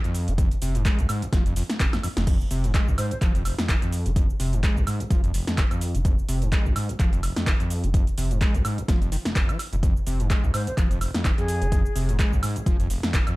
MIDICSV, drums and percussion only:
0, 0, Header, 1, 2, 480
1, 0, Start_track
1, 0, Key_signature, -4, "minor"
1, 0, Tempo, 472441
1, 387, Time_signature, 4, 2, 24, 8
1, 13576, End_track
2, 0, Start_track
2, 0, Title_t, "Drums"
2, 43, Note_on_c, 9, 42, 38
2, 47, Note_on_c, 9, 82, 31
2, 145, Note_off_c, 9, 42, 0
2, 148, Note_on_c, 9, 46, 90
2, 149, Note_off_c, 9, 82, 0
2, 152, Note_on_c, 9, 82, 81
2, 249, Note_off_c, 9, 46, 0
2, 254, Note_off_c, 9, 82, 0
2, 283, Note_on_c, 9, 42, 55
2, 287, Note_on_c, 9, 82, 36
2, 384, Note_off_c, 9, 42, 0
2, 387, Note_on_c, 9, 36, 119
2, 387, Note_on_c, 9, 42, 70
2, 389, Note_off_c, 9, 82, 0
2, 392, Note_on_c, 9, 82, 46
2, 489, Note_off_c, 9, 36, 0
2, 489, Note_off_c, 9, 42, 0
2, 493, Note_off_c, 9, 82, 0
2, 523, Note_on_c, 9, 42, 40
2, 527, Note_on_c, 9, 82, 33
2, 624, Note_off_c, 9, 42, 0
2, 627, Note_on_c, 9, 46, 109
2, 629, Note_off_c, 9, 82, 0
2, 631, Note_on_c, 9, 82, 85
2, 728, Note_off_c, 9, 46, 0
2, 733, Note_off_c, 9, 82, 0
2, 762, Note_on_c, 9, 42, 55
2, 766, Note_on_c, 9, 82, 35
2, 863, Note_off_c, 9, 42, 0
2, 867, Note_on_c, 9, 36, 108
2, 867, Note_on_c, 9, 42, 67
2, 868, Note_off_c, 9, 82, 0
2, 870, Note_on_c, 9, 39, 117
2, 872, Note_on_c, 9, 82, 47
2, 969, Note_off_c, 9, 36, 0
2, 969, Note_off_c, 9, 42, 0
2, 971, Note_off_c, 9, 39, 0
2, 973, Note_off_c, 9, 82, 0
2, 1002, Note_on_c, 9, 42, 38
2, 1007, Note_on_c, 9, 82, 34
2, 1104, Note_off_c, 9, 42, 0
2, 1107, Note_on_c, 9, 46, 95
2, 1107, Note_on_c, 9, 76, 87
2, 1108, Note_off_c, 9, 82, 0
2, 1112, Note_on_c, 9, 82, 85
2, 1209, Note_off_c, 9, 46, 0
2, 1209, Note_off_c, 9, 76, 0
2, 1213, Note_off_c, 9, 82, 0
2, 1243, Note_on_c, 9, 42, 58
2, 1247, Note_on_c, 9, 82, 36
2, 1344, Note_off_c, 9, 42, 0
2, 1347, Note_on_c, 9, 36, 112
2, 1347, Note_on_c, 9, 38, 61
2, 1347, Note_on_c, 9, 42, 76
2, 1349, Note_off_c, 9, 82, 0
2, 1352, Note_on_c, 9, 82, 49
2, 1449, Note_off_c, 9, 36, 0
2, 1449, Note_off_c, 9, 38, 0
2, 1449, Note_off_c, 9, 42, 0
2, 1453, Note_off_c, 9, 82, 0
2, 1483, Note_on_c, 9, 42, 40
2, 1487, Note_on_c, 9, 82, 33
2, 1584, Note_off_c, 9, 42, 0
2, 1587, Note_on_c, 9, 46, 99
2, 1589, Note_off_c, 9, 82, 0
2, 1592, Note_on_c, 9, 82, 81
2, 1689, Note_off_c, 9, 46, 0
2, 1693, Note_off_c, 9, 82, 0
2, 1722, Note_on_c, 9, 38, 82
2, 1722, Note_on_c, 9, 42, 58
2, 1727, Note_on_c, 9, 82, 36
2, 1824, Note_off_c, 9, 38, 0
2, 1824, Note_off_c, 9, 42, 0
2, 1827, Note_on_c, 9, 36, 101
2, 1827, Note_on_c, 9, 42, 71
2, 1828, Note_off_c, 9, 82, 0
2, 1830, Note_on_c, 9, 39, 127
2, 1832, Note_on_c, 9, 82, 50
2, 1929, Note_off_c, 9, 36, 0
2, 1929, Note_off_c, 9, 42, 0
2, 1932, Note_off_c, 9, 39, 0
2, 1933, Note_off_c, 9, 82, 0
2, 1962, Note_on_c, 9, 38, 71
2, 1962, Note_on_c, 9, 42, 37
2, 1962, Note_on_c, 9, 76, 59
2, 1967, Note_on_c, 9, 82, 32
2, 2064, Note_off_c, 9, 38, 0
2, 2064, Note_off_c, 9, 42, 0
2, 2064, Note_off_c, 9, 76, 0
2, 2067, Note_on_c, 9, 46, 93
2, 2067, Note_on_c, 9, 76, 61
2, 2068, Note_off_c, 9, 82, 0
2, 2072, Note_on_c, 9, 82, 80
2, 2169, Note_off_c, 9, 46, 0
2, 2169, Note_off_c, 9, 76, 0
2, 2173, Note_off_c, 9, 82, 0
2, 2202, Note_on_c, 9, 38, 102
2, 2202, Note_on_c, 9, 42, 57
2, 2207, Note_on_c, 9, 82, 36
2, 2304, Note_off_c, 9, 38, 0
2, 2304, Note_off_c, 9, 42, 0
2, 2307, Note_on_c, 9, 36, 124
2, 2307, Note_on_c, 9, 42, 73
2, 2307, Note_on_c, 9, 49, 75
2, 2308, Note_off_c, 9, 82, 0
2, 2311, Note_on_c, 9, 82, 44
2, 2408, Note_off_c, 9, 42, 0
2, 2408, Note_off_c, 9, 49, 0
2, 2409, Note_off_c, 9, 36, 0
2, 2413, Note_off_c, 9, 82, 0
2, 2447, Note_on_c, 9, 82, 31
2, 2547, Note_on_c, 9, 46, 113
2, 2549, Note_off_c, 9, 82, 0
2, 2551, Note_on_c, 9, 82, 80
2, 2649, Note_off_c, 9, 46, 0
2, 2653, Note_off_c, 9, 82, 0
2, 2682, Note_on_c, 9, 42, 56
2, 2687, Note_on_c, 9, 82, 33
2, 2784, Note_off_c, 9, 42, 0
2, 2787, Note_on_c, 9, 36, 108
2, 2788, Note_off_c, 9, 82, 0
2, 2788, Note_on_c, 9, 42, 68
2, 2791, Note_on_c, 9, 39, 123
2, 2792, Note_on_c, 9, 82, 44
2, 2889, Note_off_c, 9, 36, 0
2, 2889, Note_off_c, 9, 42, 0
2, 2892, Note_off_c, 9, 39, 0
2, 2894, Note_off_c, 9, 82, 0
2, 2927, Note_on_c, 9, 82, 32
2, 3027, Note_on_c, 9, 46, 95
2, 3027, Note_on_c, 9, 76, 85
2, 3029, Note_off_c, 9, 82, 0
2, 3032, Note_on_c, 9, 82, 78
2, 3129, Note_off_c, 9, 46, 0
2, 3129, Note_off_c, 9, 76, 0
2, 3133, Note_off_c, 9, 82, 0
2, 3162, Note_on_c, 9, 42, 56
2, 3167, Note_on_c, 9, 82, 34
2, 3264, Note_off_c, 9, 42, 0
2, 3267, Note_on_c, 9, 36, 111
2, 3268, Note_off_c, 9, 82, 0
2, 3268, Note_on_c, 9, 42, 74
2, 3271, Note_on_c, 9, 39, 66
2, 3272, Note_on_c, 9, 82, 49
2, 3369, Note_off_c, 9, 36, 0
2, 3369, Note_off_c, 9, 42, 0
2, 3372, Note_off_c, 9, 39, 0
2, 3374, Note_off_c, 9, 82, 0
2, 3403, Note_on_c, 9, 42, 40
2, 3408, Note_on_c, 9, 82, 32
2, 3505, Note_off_c, 9, 42, 0
2, 3508, Note_on_c, 9, 46, 104
2, 3508, Note_on_c, 9, 76, 62
2, 3509, Note_off_c, 9, 82, 0
2, 3512, Note_on_c, 9, 82, 80
2, 3610, Note_off_c, 9, 46, 0
2, 3610, Note_off_c, 9, 76, 0
2, 3614, Note_off_c, 9, 82, 0
2, 3643, Note_on_c, 9, 38, 82
2, 3643, Note_on_c, 9, 42, 55
2, 3647, Note_on_c, 9, 82, 36
2, 3744, Note_off_c, 9, 38, 0
2, 3744, Note_off_c, 9, 42, 0
2, 3747, Note_on_c, 9, 36, 99
2, 3748, Note_on_c, 9, 42, 74
2, 3749, Note_off_c, 9, 82, 0
2, 3751, Note_on_c, 9, 39, 127
2, 3752, Note_on_c, 9, 82, 48
2, 3849, Note_off_c, 9, 36, 0
2, 3850, Note_off_c, 9, 42, 0
2, 3852, Note_off_c, 9, 39, 0
2, 3854, Note_off_c, 9, 82, 0
2, 3883, Note_on_c, 9, 42, 37
2, 3888, Note_on_c, 9, 82, 30
2, 3985, Note_off_c, 9, 42, 0
2, 3988, Note_on_c, 9, 46, 93
2, 3989, Note_off_c, 9, 82, 0
2, 3992, Note_on_c, 9, 82, 77
2, 4089, Note_off_c, 9, 46, 0
2, 4094, Note_off_c, 9, 82, 0
2, 4123, Note_on_c, 9, 42, 57
2, 4127, Note_on_c, 9, 82, 35
2, 4225, Note_off_c, 9, 42, 0
2, 4227, Note_on_c, 9, 36, 126
2, 4228, Note_on_c, 9, 42, 69
2, 4229, Note_off_c, 9, 82, 0
2, 4232, Note_on_c, 9, 82, 44
2, 4329, Note_off_c, 9, 36, 0
2, 4329, Note_off_c, 9, 42, 0
2, 4334, Note_off_c, 9, 82, 0
2, 4368, Note_on_c, 9, 82, 30
2, 4468, Note_on_c, 9, 46, 113
2, 4469, Note_off_c, 9, 82, 0
2, 4472, Note_on_c, 9, 82, 79
2, 4569, Note_off_c, 9, 46, 0
2, 4574, Note_off_c, 9, 82, 0
2, 4603, Note_on_c, 9, 42, 51
2, 4607, Note_on_c, 9, 82, 32
2, 4704, Note_off_c, 9, 42, 0
2, 4707, Note_on_c, 9, 36, 110
2, 4708, Note_on_c, 9, 42, 65
2, 4709, Note_off_c, 9, 82, 0
2, 4710, Note_on_c, 9, 39, 123
2, 4712, Note_on_c, 9, 82, 43
2, 4809, Note_off_c, 9, 36, 0
2, 4809, Note_off_c, 9, 42, 0
2, 4812, Note_off_c, 9, 39, 0
2, 4814, Note_off_c, 9, 82, 0
2, 4848, Note_on_c, 9, 82, 30
2, 4948, Note_on_c, 9, 46, 103
2, 4948, Note_on_c, 9, 76, 83
2, 4949, Note_off_c, 9, 82, 0
2, 4952, Note_on_c, 9, 82, 80
2, 5049, Note_off_c, 9, 46, 0
2, 5049, Note_off_c, 9, 76, 0
2, 5054, Note_off_c, 9, 82, 0
2, 5083, Note_on_c, 9, 42, 55
2, 5088, Note_on_c, 9, 82, 34
2, 5185, Note_off_c, 9, 42, 0
2, 5187, Note_on_c, 9, 36, 122
2, 5187, Note_on_c, 9, 42, 69
2, 5189, Note_off_c, 9, 82, 0
2, 5191, Note_on_c, 9, 82, 47
2, 5288, Note_off_c, 9, 42, 0
2, 5289, Note_off_c, 9, 36, 0
2, 5293, Note_off_c, 9, 82, 0
2, 5322, Note_on_c, 9, 42, 39
2, 5327, Note_on_c, 9, 82, 30
2, 5424, Note_off_c, 9, 42, 0
2, 5427, Note_on_c, 9, 46, 110
2, 5428, Note_off_c, 9, 82, 0
2, 5431, Note_on_c, 9, 82, 76
2, 5528, Note_off_c, 9, 46, 0
2, 5533, Note_off_c, 9, 82, 0
2, 5562, Note_on_c, 9, 38, 83
2, 5562, Note_on_c, 9, 42, 56
2, 5566, Note_on_c, 9, 82, 32
2, 5663, Note_off_c, 9, 38, 0
2, 5663, Note_off_c, 9, 42, 0
2, 5667, Note_on_c, 9, 36, 107
2, 5667, Note_on_c, 9, 42, 71
2, 5668, Note_off_c, 9, 82, 0
2, 5670, Note_on_c, 9, 39, 127
2, 5671, Note_on_c, 9, 82, 46
2, 5768, Note_off_c, 9, 42, 0
2, 5769, Note_off_c, 9, 36, 0
2, 5771, Note_off_c, 9, 39, 0
2, 5773, Note_off_c, 9, 82, 0
2, 5802, Note_on_c, 9, 42, 37
2, 5802, Note_on_c, 9, 76, 56
2, 5806, Note_on_c, 9, 82, 30
2, 5903, Note_off_c, 9, 42, 0
2, 5903, Note_off_c, 9, 76, 0
2, 5907, Note_on_c, 9, 46, 98
2, 5908, Note_off_c, 9, 82, 0
2, 5911, Note_on_c, 9, 82, 77
2, 6008, Note_off_c, 9, 46, 0
2, 6013, Note_off_c, 9, 82, 0
2, 6042, Note_on_c, 9, 42, 54
2, 6046, Note_on_c, 9, 82, 33
2, 6143, Note_off_c, 9, 42, 0
2, 6146, Note_on_c, 9, 42, 64
2, 6147, Note_on_c, 9, 36, 127
2, 6148, Note_off_c, 9, 82, 0
2, 6151, Note_on_c, 9, 82, 44
2, 6248, Note_off_c, 9, 36, 0
2, 6248, Note_off_c, 9, 42, 0
2, 6252, Note_off_c, 9, 82, 0
2, 6286, Note_on_c, 9, 82, 29
2, 6386, Note_on_c, 9, 46, 117
2, 6387, Note_off_c, 9, 82, 0
2, 6391, Note_on_c, 9, 82, 78
2, 6488, Note_off_c, 9, 46, 0
2, 6492, Note_off_c, 9, 82, 0
2, 6521, Note_on_c, 9, 42, 51
2, 6526, Note_on_c, 9, 82, 31
2, 6623, Note_off_c, 9, 42, 0
2, 6626, Note_on_c, 9, 36, 115
2, 6627, Note_off_c, 9, 82, 0
2, 6627, Note_on_c, 9, 42, 65
2, 6630, Note_on_c, 9, 39, 121
2, 6631, Note_on_c, 9, 82, 43
2, 6728, Note_off_c, 9, 36, 0
2, 6728, Note_off_c, 9, 42, 0
2, 6731, Note_off_c, 9, 39, 0
2, 6733, Note_off_c, 9, 82, 0
2, 6766, Note_on_c, 9, 82, 31
2, 6866, Note_on_c, 9, 46, 104
2, 6866, Note_on_c, 9, 76, 88
2, 6868, Note_off_c, 9, 82, 0
2, 6871, Note_on_c, 9, 82, 78
2, 6968, Note_off_c, 9, 46, 0
2, 6968, Note_off_c, 9, 76, 0
2, 6972, Note_off_c, 9, 82, 0
2, 7002, Note_on_c, 9, 42, 51
2, 7006, Note_on_c, 9, 82, 33
2, 7104, Note_off_c, 9, 42, 0
2, 7106, Note_on_c, 9, 36, 122
2, 7106, Note_on_c, 9, 42, 69
2, 7108, Note_off_c, 9, 82, 0
2, 7109, Note_on_c, 9, 39, 66
2, 7111, Note_on_c, 9, 82, 47
2, 7208, Note_off_c, 9, 36, 0
2, 7208, Note_off_c, 9, 42, 0
2, 7211, Note_off_c, 9, 39, 0
2, 7212, Note_off_c, 9, 82, 0
2, 7242, Note_on_c, 9, 42, 36
2, 7246, Note_on_c, 9, 82, 30
2, 7343, Note_off_c, 9, 42, 0
2, 7346, Note_on_c, 9, 46, 112
2, 7346, Note_on_c, 9, 76, 66
2, 7348, Note_off_c, 9, 82, 0
2, 7351, Note_on_c, 9, 82, 75
2, 7448, Note_off_c, 9, 46, 0
2, 7448, Note_off_c, 9, 76, 0
2, 7452, Note_off_c, 9, 82, 0
2, 7482, Note_on_c, 9, 38, 89
2, 7482, Note_on_c, 9, 42, 53
2, 7486, Note_on_c, 9, 82, 34
2, 7583, Note_off_c, 9, 38, 0
2, 7583, Note_off_c, 9, 42, 0
2, 7586, Note_on_c, 9, 36, 105
2, 7587, Note_on_c, 9, 42, 68
2, 7588, Note_off_c, 9, 82, 0
2, 7590, Note_on_c, 9, 39, 127
2, 7591, Note_on_c, 9, 82, 43
2, 7688, Note_off_c, 9, 36, 0
2, 7689, Note_off_c, 9, 42, 0
2, 7691, Note_off_c, 9, 39, 0
2, 7693, Note_off_c, 9, 82, 0
2, 7722, Note_on_c, 9, 42, 36
2, 7726, Note_on_c, 9, 82, 29
2, 7823, Note_off_c, 9, 42, 0
2, 7826, Note_on_c, 9, 46, 100
2, 7828, Note_off_c, 9, 82, 0
2, 7831, Note_on_c, 9, 82, 74
2, 7928, Note_off_c, 9, 46, 0
2, 7933, Note_off_c, 9, 82, 0
2, 7962, Note_on_c, 9, 42, 52
2, 7966, Note_on_c, 9, 82, 33
2, 8064, Note_off_c, 9, 42, 0
2, 8067, Note_on_c, 9, 36, 126
2, 8067, Note_on_c, 9, 42, 65
2, 8068, Note_off_c, 9, 82, 0
2, 8071, Note_on_c, 9, 82, 43
2, 8168, Note_off_c, 9, 36, 0
2, 8168, Note_off_c, 9, 42, 0
2, 8173, Note_off_c, 9, 82, 0
2, 8202, Note_on_c, 9, 42, 34
2, 8206, Note_on_c, 9, 82, 31
2, 8303, Note_off_c, 9, 42, 0
2, 8307, Note_on_c, 9, 46, 116
2, 8308, Note_off_c, 9, 82, 0
2, 8311, Note_on_c, 9, 82, 80
2, 8408, Note_off_c, 9, 46, 0
2, 8413, Note_off_c, 9, 82, 0
2, 8442, Note_on_c, 9, 42, 50
2, 8447, Note_on_c, 9, 82, 32
2, 8544, Note_off_c, 9, 42, 0
2, 8546, Note_on_c, 9, 36, 116
2, 8547, Note_on_c, 9, 42, 62
2, 8548, Note_off_c, 9, 82, 0
2, 8550, Note_on_c, 9, 39, 114
2, 8551, Note_on_c, 9, 82, 42
2, 8648, Note_off_c, 9, 36, 0
2, 8648, Note_off_c, 9, 42, 0
2, 8651, Note_off_c, 9, 39, 0
2, 8653, Note_off_c, 9, 82, 0
2, 8682, Note_on_c, 9, 42, 35
2, 8686, Note_on_c, 9, 82, 31
2, 8783, Note_off_c, 9, 42, 0
2, 8786, Note_on_c, 9, 46, 98
2, 8786, Note_on_c, 9, 76, 91
2, 8788, Note_off_c, 9, 82, 0
2, 8791, Note_on_c, 9, 82, 79
2, 8888, Note_off_c, 9, 46, 0
2, 8888, Note_off_c, 9, 76, 0
2, 8893, Note_off_c, 9, 82, 0
2, 8922, Note_on_c, 9, 42, 50
2, 8926, Note_on_c, 9, 82, 33
2, 9024, Note_off_c, 9, 42, 0
2, 9027, Note_on_c, 9, 36, 120
2, 9027, Note_on_c, 9, 38, 69
2, 9027, Note_on_c, 9, 42, 70
2, 9028, Note_off_c, 9, 82, 0
2, 9031, Note_on_c, 9, 82, 46
2, 9128, Note_off_c, 9, 36, 0
2, 9129, Note_off_c, 9, 38, 0
2, 9129, Note_off_c, 9, 42, 0
2, 9133, Note_off_c, 9, 82, 0
2, 9162, Note_on_c, 9, 42, 37
2, 9166, Note_on_c, 9, 82, 32
2, 9263, Note_off_c, 9, 42, 0
2, 9266, Note_on_c, 9, 46, 109
2, 9268, Note_off_c, 9, 82, 0
2, 9271, Note_on_c, 9, 82, 77
2, 9368, Note_off_c, 9, 46, 0
2, 9372, Note_off_c, 9, 82, 0
2, 9402, Note_on_c, 9, 38, 88
2, 9402, Note_on_c, 9, 42, 52
2, 9407, Note_on_c, 9, 82, 34
2, 9504, Note_off_c, 9, 38, 0
2, 9504, Note_off_c, 9, 42, 0
2, 9507, Note_on_c, 9, 36, 109
2, 9507, Note_on_c, 9, 42, 66
2, 9508, Note_off_c, 9, 82, 0
2, 9510, Note_on_c, 9, 39, 124
2, 9511, Note_on_c, 9, 82, 47
2, 9608, Note_off_c, 9, 36, 0
2, 9608, Note_off_c, 9, 42, 0
2, 9611, Note_off_c, 9, 39, 0
2, 9613, Note_off_c, 9, 82, 0
2, 9642, Note_on_c, 9, 42, 35
2, 9642, Note_on_c, 9, 76, 65
2, 9647, Note_on_c, 9, 82, 29
2, 9744, Note_off_c, 9, 42, 0
2, 9744, Note_off_c, 9, 76, 0
2, 9747, Note_on_c, 9, 46, 98
2, 9747, Note_on_c, 9, 76, 64
2, 9748, Note_off_c, 9, 82, 0
2, 9751, Note_on_c, 9, 82, 74
2, 9848, Note_off_c, 9, 46, 0
2, 9848, Note_off_c, 9, 76, 0
2, 9853, Note_off_c, 9, 82, 0
2, 9882, Note_on_c, 9, 42, 49
2, 9887, Note_on_c, 9, 82, 33
2, 9984, Note_off_c, 9, 42, 0
2, 9987, Note_on_c, 9, 36, 121
2, 9987, Note_on_c, 9, 42, 63
2, 9988, Note_off_c, 9, 82, 0
2, 9991, Note_on_c, 9, 82, 46
2, 10088, Note_off_c, 9, 36, 0
2, 10089, Note_off_c, 9, 42, 0
2, 10093, Note_off_c, 9, 82, 0
2, 10127, Note_on_c, 9, 82, 32
2, 10227, Note_on_c, 9, 46, 107
2, 10228, Note_off_c, 9, 82, 0
2, 10232, Note_on_c, 9, 82, 83
2, 10329, Note_off_c, 9, 46, 0
2, 10333, Note_off_c, 9, 82, 0
2, 10363, Note_on_c, 9, 42, 51
2, 10367, Note_on_c, 9, 82, 34
2, 10464, Note_off_c, 9, 42, 0
2, 10467, Note_on_c, 9, 36, 107
2, 10468, Note_on_c, 9, 42, 64
2, 10469, Note_off_c, 9, 82, 0
2, 10471, Note_on_c, 9, 39, 112
2, 10472, Note_on_c, 9, 82, 47
2, 10568, Note_off_c, 9, 36, 0
2, 10569, Note_off_c, 9, 42, 0
2, 10572, Note_off_c, 9, 39, 0
2, 10574, Note_off_c, 9, 82, 0
2, 10607, Note_on_c, 9, 82, 32
2, 10708, Note_on_c, 9, 46, 95
2, 10708, Note_on_c, 9, 76, 95
2, 10709, Note_off_c, 9, 82, 0
2, 10712, Note_on_c, 9, 82, 83
2, 10809, Note_off_c, 9, 46, 0
2, 10809, Note_off_c, 9, 76, 0
2, 10814, Note_off_c, 9, 82, 0
2, 10843, Note_on_c, 9, 42, 52
2, 10847, Note_on_c, 9, 82, 35
2, 10944, Note_off_c, 9, 42, 0
2, 10947, Note_on_c, 9, 36, 114
2, 10948, Note_on_c, 9, 42, 67
2, 10949, Note_off_c, 9, 82, 0
2, 10950, Note_on_c, 9, 39, 62
2, 10952, Note_on_c, 9, 82, 48
2, 11048, Note_off_c, 9, 36, 0
2, 11049, Note_off_c, 9, 42, 0
2, 11052, Note_off_c, 9, 39, 0
2, 11054, Note_off_c, 9, 82, 0
2, 11083, Note_on_c, 9, 42, 37
2, 11088, Note_on_c, 9, 82, 32
2, 11185, Note_off_c, 9, 42, 0
2, 11187, Note_on_c, 9, 46, 106
2, 11187, Note_on_c, 9, 76, 69
2, 11189, Note_off_c, 9, 82, 0
2, 11192, Note_on_c, 9, 82, 80
2, 11289, Note_off_c, 9, 46, 0
2, 11289, Note_off_c, 9, 76, 0
2, 11294, Note_off_c, 9, 82, 0
2, 11323, Note_on_c, 9, 38, 90
2, 11323, Note_on_c, 9, 42, 54
2, 11327, Note_on_c, 9, 82, 36
2, 11425, Note_off_c, 9, 38, 0
2, 11425, Note_off_c, 9, 42, 0
2, 11427, Note_on_c, 9, 36, 103
2, 11427, Note_on_c, 9, 42, 64
2, 11429, Note_off_c, 9, 82, 0
2, 11430, Note_on_c, 9, 39, 118
2, 11432, Note_on_c, 9, 82, 45
2, 11528, Note_off_c, 9, 36, 0
2, 11529, Note_off_c, 9, 42, 0
2, 11532, Note_off_c, 9, 39, 0
2, 11533, Note_off_c, 9, 82, 0
2, 11563, Note_on_c, 9, 42, 34
2, 11567, Note_on_c, 9, 82, 32
2, 11664, Note_off_c, 9, 42, 0
2, 11667, Note_on_c, 9, 46, 91
2, 11669, Note_off_c, 9, 82, 0
2, 11672, Note_on_c, 9, 82, 80
2, 11769, Note_off_c, 9, 46, 0
2, 11773, Note_off_c, 9, 82, 0
2, 11802, Note_on_c, 9, 42, 52
2, 11807, Note_on_c, 9, 82, 34
2, 11904, Note_off_c, 9, 42, 0
2, 11907, Note_on_c, 9, 36, 117
2, 11907, Note_on_c, 9, 42, 64
2, 11909, Note_off_c, 9, 82, 0
2, 11912, Note_on_c, 9, 82, 48
2, 12008, Note_off_c, 9, 36, 0
2, 12009, Note_off_c, 9, 42, 0
2, 12013, Note_off_c, 9, 82, 0
2, 12047, Note_on_c, 9, 82, 34
2, 12147, Note_on_c, 9, 46, 105
2, 12149, Note_off_c, 9, 82, 0
2, 12152, Note_on_c, 9, 82, 85
2, 12249, Note_off_c, 9, 46, 0
2, 12253, Note_off_c, 9, 82, 0
2, 12282, Note_on_c, 9, 42, 53
2, 12286, Note_on_c, 9, 82, 35
2, 12384, Note_off_c, 9, 42, 0
2, 12386, Note_on_c, 9, 36, 107
2, 12387, Note_on_c, 9, 42, 64
2, 12388, Note_off_c, 9, 82, 0
2, 12390, Note_on_c, 9, 39, 115
2, 12391, Note_on_c, 9, 82, 49
2, 12488, Note_off_c, 9, 36, 0
2, 12488, Note_off_c, 9, 42, 0
2, 12491, Note_off_c, 9, 39, 0
2, 12493, Note_off_c, 9, 82, 0
2, 12526, Note_on_c, 9, 82, 34
2, 12627, Note_on_c, 9, 46, 94
2, 12627, Note_on_c, 9, 76, 93
2, 12628, Note_off_c, 9, 82, 0
2, 12631, Note_on_c, 9, 82, 86
2, 12728, Note_off_c, 9, 46, 0
2, 12728, Note_off_c, 9, 76, 0
2, 12733, Note_off_c, 9, 82, 0
2, 12762, Note_on_c, 9, 42, 54
2, 12766, Note_on_c, 9, 82, 34
2, 12863, Note_off_c, 9, 42, 0
2, 12866, Note_on_c, 9, 36, 111
2, 12867, Note_on_c, 9, 42, 71
2, 12868, Note_off_c, 9, 82, 0
2, 12872, Note_on_c, 9, 82, 49
2, 12968, Note_off_c, 9, 36, 0
2, 12969, Note_off_c, 9, 42, 0
2, 12973, Note_off_c, 9, 82, 0
2, 13003, Note_on_c, 9, 42, 38
2, 13007, Note_on_c, 9, 82, 34
2, 13104, Note_off_c, 9, 42, 0
2, 13107, Note_on_c, 9, 46, 102
2, 13109, Note_off_c, 9, 82, 0
2, 13112, Note_on_c, 9, 82, 83
2, 13209, Note_off_c, 9, 46, 0
2, 13213, Note_off_c, 9, 82, 0
2, 13242, Note_on_c, 9, 38, 84
2, 13242, Note_on_c, 9, 42, 54
2, 13247, Note_on_c, 9, 82, 37
2, 13344, Note_off_c, 9, 38, 0
2, 13344, Note_off_c, 9, 42, 0
2, 13346, Note_on_c, 9, 36, 98
2, 13347, Note_on_c, 9, 42, 66
2, 13348, Note_off_c, 9, 82, 0
2, 13350, Note_on_c, 9, 39, 116
2, 13351, Note_on_c, 9, 82, 49
2, 13448, Note_off_c, 9, 36, 0
2, 13448, Note_off_c, 9, 42, 0
2, 13451, Note_off_c, 9, 39, 0
2, 13453, Note_off_c, 9, 82, 0
2, 13482, Note_on_c, 9, 42, 35
2, 13482, Note_on_c, 9, 76, 65
2, 13486, Note_on_c, 9, 82, 33
2, 13576, Note_off_c, 9, 42, 0
2, 13576, Note_off_c, 9, 76, 0
2, 13576, Note_off_c, 9, 82, 0
2, 13576, End_track
0, 0, End_of_file